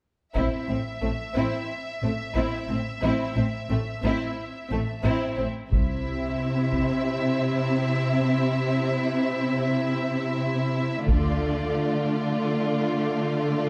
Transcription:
0.35 double bass section A1, cello section A2, viola section C4, violin section E4 E5, taiko
0.69 double bass section A1, cello section A2, viola section C4, violin section C4
1.02 double bass section A1, cello section A2, violin section A3, viola section C4
1.35 double bass section A1, cello section A2, viola section C4, violin section E4
2.03 double bass section A1, cello section A2, violin section A3, viola section C4
2.36 double bass section A1, cello section A2, viola section C4, violin section E4
2.69 double bass section A1, cello section A2, violin section C4, viola section C4
3.02 double bass section A1, cello section A2, viola section C4, violin section E4
3.36 double bass section A1, cello section A2, viola section C4, violin section C4
3.69 double bass section A1, cello section A2, violin section A3, viola section C4
4.03 double bass section A1, cello section A2, viola section C4, violin section E4
4.70 double bass section A1, cello section A2, violin section A3, viola section C4
5.04 double bass section A1, cello section A2, viola section C4, violin section E4
5.37 double bass section A1, cello section A2, viola section C4, violin section C4
5.71 double bass section C2, cello section C3, viola section C4, violin section E4 E5, taiko
6.73 taiko
11.07 double bass section D2, cello section D3, viola section A3, violin section F4 D5, taiko

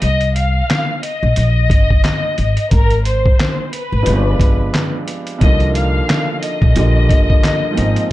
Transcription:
0.02 upright bass C2, violin section D#5, closed hi-hat
0.21 closed hi-hat
0.36 violin section F5, closed hi-hat
0.70 snare, clap, closed hi-hat
1.03 violin section D#5, closed hi-hat
1.23 upright bass A#1
1.36 upright bass A#1, closed hi-hat
1.70 upright bass G1, kick, closed hi-hat
1.90 kick
2.05 snare, clap, closed hi-hat
2.38 upright bass G#1, closed hi-hat
2.57 closed hi-hat
2.71 upright bass G#1, violin section A#4, kick, closed hi-hat
2.90 closed hi-hat
3.05 violin section C5, closed hi-hat
3.26 kick
3.39 snare, clap, closed hi-hat
3.73 violin section B4, closed hi-hat
3.92 upright bass G#1
4.03 upright piano G2 F3, closed hi-hat
4.07 upright bass G1, upright piano G#3 B3 C4
4.17 upright piano D4
4.40 upright bass G1, kick, closed hi-hat
4.75 snare, clap, closed hi-hat
5.08 closed hi-hat
5.27 closed hi-hat
5.38 upright piano C2 D#3, upright bass C2, kick, closed hi-hat
5.42 upright piano F3 A#3, violin section D#5
5.46 upright piano D3
5.60 closed hi-hat
5.75 violin section F5, closed hi-hat
6.09 snare, clap, closed hi-hat
6.42 violin section D#5, closed hi-hat
6.62 upright bass A#1, kick
6.75 upright bass A#1, upright piano A#2 D3 F3 G3 A#3, closed hi-hat
7.09 upright bass G1, kick, closed hi-hat
7.30 kick
7.44 snare, clap, closed hi-hat
7.71 upright piano G#2 F3
7.75 upright bass G#1, upright piano A#2 C4, closed hi-hat
7.79 upright piano D#4
7.96 closed hi-hat

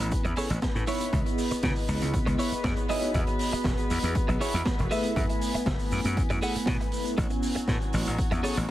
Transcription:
Already playing: analog polysynth B3 C#4 E4 G#5, string section B3 B4
0.00 slap bass A1
0.11 kick, closed hi-hat, shaker
0.25 slap bass E2, muted clean electric guitar stroke, closed hi-hat, shaker
0.36 clean electric guitar G#4 A4 C#5, open hi-hat, shaker
0.50 slap bass A1, closed hi-hat, shaker
0.62 muted clean electric guitar stroke, kick, snare, closed hi-hat, shaker
0.75 slap bass A2, muted clean electric guitar stroke, closed hi-hat, shaker
0.87 analog polysynth B3 D#4 E4 C#5, clean electric guitar E4 B4 C#5, open hi-hat, shaker
1.01 closed hi-hat, shaker
1.12 slap bass C#2, analog polysynth B3 E4 G#4 D#5, kick, closed hi-hat, shaker
1.26 muted clean electric guitar stroke, closed hi-hat, shaker
1.38 open hi-hat, shaker
1.51 muted clean electric guitar stroke, muted slap bass stroke, closed hi-hat, shaker
1.63 slap bass C#3, muted clean electric guitar stroke, kick, snare, closed hi-hat, shaker
1.76 open hi-hat, shaker
1.88 slap bass C#2, open hi-hat, shaker
2.02 slap bass C#2, closed hi-hat, shaker
2.14 kick, closed hi-hat, shaker
2.26 slap bass C#2, muted clean electric guitar stroke, closed hi-hat, shaker
2.38 clean electric guitar E4 B4 C#5, open hi-hat, shaker
2.51 muted slap bass stroke, closed hi-hat, shaker
2.64 slap bass F#2, muted clean electric guitar stroke, kick, snare, closed hi-hat, shaker
2.77 muted clean electric guitar stroke, closed hi-hat, shaker
2.88 analog polysynth B3 D#4 F#4 C#5, clean electric guitar E4 G#4 D#5, open hi-hat, shaker
3.02 closed hi-hat, shaker
3.13 slap bass E2, analog polysynth B3 F#4 G#4 D#5, kick, closed hi-hat, shaker
3.27 muted clean electric guitar stroke, closed hi-hat, shaker
3.39 open hi-hat, shaker
3.52 muted clean electric guitar stroke, muted slap bass stroke, closed hi-hat, shaker
3.64 slap bass E1, muted clean electric guitar stroke, kick, snare, closed hi-hat, shaker
3.78 closed hi-hat, shaker
3.90 slap bass E2, open hi-hat, shaker
4.03 slap bass E2, closed hi-hat, shaker
4.15 muted slap bass stroke, kick, closed hi-hat, shaker
4.28 slap bass B1, muted clean electric guitar stroke, closed hi-hat, shaker
4.40 clean electric guitar E4 G#4 C#5, open hi-hat, shaker
4.54 slap bass E2, closed hi-hat, shaker
4.66 muted clean electric guitar stroke, kick, snare, closed hi-hat, shaker
4.79 slap bass E1, muted clean electric guitar stroke, closed hi-hat, shaker
4.91 analog polysynth A3 B3 E4 B4, clean electric guitar G#4 A4 B4 E5, open hi-hat, shaker
5.03 closed hi-hat, shaker
5.16 slap bass F#2, analog polysynth A3 B3 E4 G#5, kick, closed hi-hat, shaker
5.29 muted clean electric guitar stroke, closed hi-hat, shaker
5.41 open hi-hat, shaker
5.54 muted slap bass stroke, muted clean electric guitar stroke, closed hi-hat, shaker
5.66 slap bass F#1, muted clean electric guitar stroke, kick, snare, closed hi-hat, shaker
5.79 open hi-hat, shaker
5.91 slap bass F#2, open hi-hat, shaker
6.05 slap bass F#2, closed hi-hat, shaker
6.17 kick, closed hi-hat, shaker
6.30 slap bass F#2, muted clean electric guitar stroke, closed hi-hat, shaker
6.42 clean electric guitar G#4 A4 B4 F#5, open hi-hat, shaker
6.55 muted slap bass stroke, closed hi-hat, shaker
6.66 slap bass B2, muted clean electric guitar stroke, kick, snare, closed hi-hat, shaker
6.80 muted clean electric guitar stroke, closed hi-hat, shaker
6.92 analog polysynth A3 B3 E4 B4, open hi-hat, shaker
7.05 closed hi-hat, shaker
7.16 slap bass A1, string section F#3 F#4, analog polysynth B3 C#4 E4 G#5, muted clean electric guitar stroke, kick, closed hi-hat, shaker
7.30 muted clean electric guitar stroke, closed hi-hat, shaker
7.43 open hi-hat, shaker
7.55 muted clean electric guitar stroke, muted slap bass stroke, closed hi-hat, shaker
7.68 slap bass A2, muted clean electric guitar stroke, kick, snare, closed hi-hat, shaker
7.82 closed hi-hat, shaker
7.93 slap bass A1, open hi-hat, shaker
8.06 slap bass A1, closed hi-hat, shaker
8.18 muted slap bass stroke, kick, closed hi-hat, shaker
8.31 slap bass E2, muted clean electric guitar stroke, closed hi-hat, shaker
8.43 clean electric guitar G#4 A4 C#5, open hi-hat, shaker
8.57 slap bass A1, closed hi-hat, shaker

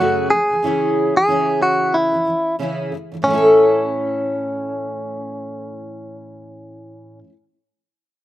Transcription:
Already playing: steel-string acoustic guitar F#2, clean electric guitar F#4
0.00 steel-string acoustic guitar C#3 F#3 A3 F#4 G#4
0.30 steel-string acoustic guitar C#3 E3, clean electric guitar G#4
0.50 steel-string acoustic guitar C#3 E3
0.63 steel-string acoustic guitar C#3 E3 C#4 E4 G#4
1.16 steel-string acoustic guitar E3, clean electric guitar G#4
1.27 steel-string acoustic guitar C#3 E3 C#4 E4 G#4
1.62 clean electric guitar F#4
1.94 clean electric guitar E4
2.12 steel-string acoustic guitar C#3 E3
2.25 steel-string acoustic guitar C#3 E3
2.59 steel-string acoustic guitar C#3 E3 C#4 E4 G#4
2.92 steel-string acoustic guitar C#3 E3
3.12 steel-string acoustic guitar C#3 E3
3.22 steel-string acoustic guitar A2 E3, clean electric guitar C#4
3.27 steel-string acoustic guitar A3 C#4
3.32 steel-string acoustic guitar E4 A4

